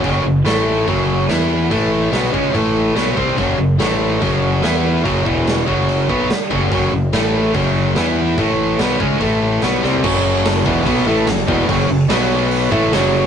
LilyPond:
<<
  \new Staff \with { instrumentName = "Tonewheel organ" } { \time 4/4 \key fis \minor \tempo 4 = 144 << { r1 | r1 | r1 | r1 |
r1 | r1 | <b bis d' e' eis' g' a' b' bis' d'' e'' eis''>8 r2. r8 | r1 | } \\ { r1 | r1 | r1 | r1 |
r1 | r1 | <a cis' fis' a'>1~ | <a cis' fis' a'>4 <fis b fis' b'>4. <a cis' fis' a'>4. | } >> }
  \new Staff \with { instrumentName = "Distorted electric guitar" } { \clef bass \time 4/4 \key fis \minor <fis, cis fis>8 <fis, cis>8 <a, e a>4 <fis, cis fis>4 <e b e'>4 | <a, e a>4 <b, fis b>8 <cis gis cis'>8 <a, e a>4 <b, fis b>8 <bis, g bis>8 | <fis, cis fis>8 <fis, cis>8 <a, e a>4 <fis, cis fis>4 <e b e'>4 | <fis, cis fis>8 <e, b, e>4 <fis, cis fis>4 <b, fis b>8 r8 <fis, cis fis>8 |
<fis, cis fis>8 <fis, cis>8 <a, e a>4 <fis, cis fis>4 <e b e'>4 | <a, e a>4 <b, fis b>8 <cis gis cis'>8 <a, e a>4 <b, fis b>8 <c g c'>8 | <fis, cis fis>4. <e, b, e>8 <b, fis b>8 <a, e a>8 <fis, cis>8 <e, b, e>8 | <fis, cis fis>8 <fis, cis>8 <b, fis b>4. <a, e a>8 <fis, cis fis>4 | }
  \new Staff \with { instrumentName = "Overdriven electric guitar" } { \clef bass \time 4/4 \key fis \minor <fis, cis fis>8 <fis, cis>8 <a, e a>4 <fis, cis fis>4 <e b e'>4 | <a, e a>4 <b, fis b>8 <cis gis cis'>8 <a, e a>4 <b, fis b>8 <bis, g bis>8 | <fis, cis fis>8 <fis, cis>8 <a, e a>4 <fis, cis fis>4 <e b e'>4 | <fis, cis fis>8 <e, b, e>4 <fis, cis fis>4 <b, fis b>8 r8 <fis, cis fis>8 |
<fis, cis fis>8 <fis, cis>8 <a, e a>4 <fis, cis fis>4 <e b e'>4 | <a, e a>4 <b, fis b>8 <cis gis cis'>8 <a, e a>4 <b, fis b>8 <c g c'>8 | <fis, cis fis>4. <e, b, e>8 <b, fis b>8 <a, e a>8 <fis, cis>8 <e, b, e>8 | <fis, cis fis>8 <fis, cis>8 <b, fis b>4. <a, e a>8 <fis, cis fis>4 | }
  \new Staff \with { instrumentName = "Overdriven electric guitar" } { \clef bass \time 4/4 \key fis \minor r1 | r1 | r1 | r1 |
r1 | r1 | <fis, cis fis>4. <e, b, e>8 <b, fis b>8 <a, e a>8 <fis, cis>8 <e, b, e>8 | <fis, cis fis>8 <fis, cis>8 <b, fis b>4. <a, e a>8 <fis, cis fis>4 | }
  \new Staff \with { instrumentName = "Fingered electric bass" } { \clef bass \time 4/4 \key fis \minor fis,,8 fis,,8 a,,4 fis,,4 e,4 | a,,4 b,,8 cis,8 a,,4 b,,8 bis,,8 | fis,,8 fis,,8 a,,4 fis,,4 e,4 | fis,,8 e,,4 fis,,4 b,,8 r8 fis,,8 |
fis,,8 fis,,8 a,,4 fis,,4 e,4 | a,,4 b,,8 cis,8 a,,4 b,,8 c,8 | fis,,4. e,,8 b,,8 a,,8 fis,,8 e,,8 | fis,,8 fis,,8 b,,4. a,,8 fis,,4 | }
  \new DrumStaff \with { instrumentName = "Drums" } \drummode { \time 4/4 <hho bd>4 <hho sn>4 <hho bd>4 <hho sn>4 | <hho bd>4 <hho sn>16 sn16 bd8 <hho bd>4 <hho sn>8 bd8 | <hho bd>4 <hho sn>4 <hho bd>4 <hho sn>4 | <hho bd>8 bd8 <hho sn>8 bd8 hho8 bd8 <hho sn>8 bd8 |
<hho bd>4 <hho sn>16 sn8. <hho bd>4 <hho sn>4 | <hho bd>4 <hho sn>16 sn16 bd8 <hho bd>4 <hho sn>8 sn16 tomfh16 | <cymc bd>4 <hho sn>8 bd8 <hho bd>4 <hho sn>8 bd8 | <hho bd>4 <hho sn>4 hho8 bd8 <hho sn>4 | }
>>